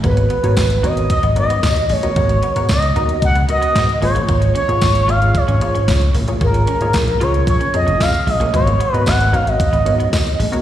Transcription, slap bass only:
\new Staff \with { instrumentName = "Slap bass" } { \clef bass \time 4/4 \key gis \dorian \tempo 4 = 113 gis,,8 r16 gis,16 gis,,8 gis,,8 r16 gis,,16 gis,8 dis,8 a,,8 | gis,,8 r16 gis,16 cis,8 dis,8 cis,8 r8 gis,16 r16 gis,,16 a,,16 | gis,,8 r16 gis,16 gis,,8 gis,,8 r16 gis,,16 gis,8 cis,8 a,,8 | gis,,8 r16 gis,16 ais,,8 cis,8 ais,,16 r16 eis,16 eis,,16 eis,16 r16 ais,,16 a,,16 |
gis,,8 r16 gis,16 gis,,8 gis,,8 r16 gis,,16 gis,8 dis,8 a,,8 | }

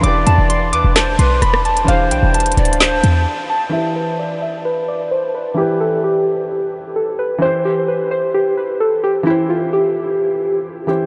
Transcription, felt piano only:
\new Staff \with { instrumentName = "Felt piano" } { \time 4/4 \key e \minor \tempo 4 = 130 <e d' g' b'>1 | <e d' g' c''>1 | <e e' g' b'>1 | <e e' g' b'>1 |
<e e' g' c''>1 | <e e' g' c''>2.~ <e e' g' c''>8 <e e' g' c''>8 | }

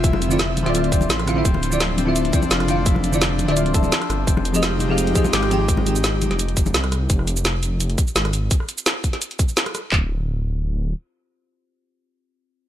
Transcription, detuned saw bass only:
\new Staff \with { instrumentName = "Detuned saw bass" } { \clef bass \time 4/4 \key f \major \tempo 4 = 170 f,,4.~ f,,16 d,,4~ d,,16 a,,4 | d,,2~ d,,8 r8 f,,4~ | f,,4.~ f,,16 d,,4~ d,,16 r8 g,,8 | f,,2~ f,,8 r8 aes,,4~ |
aes,,4.~ aes,,16 f,,4~ f,,16 c,4 | f,,2~ f,,8 r8 aes,,4 | r1 | d,,2. r4 |
r1 | }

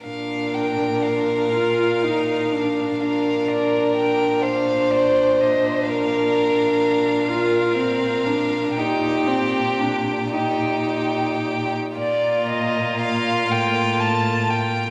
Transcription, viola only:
\new Staff \with { instrumentName = "Viola" } { \time 6/8 \key bes \major \tempo 4. = 41 d'4. f'8 ees'8 d'8 | d'2.~ | d'4. f'8 c'8 d'8 | ees'8 c'8 d'8 ees'4. |
bes2. | }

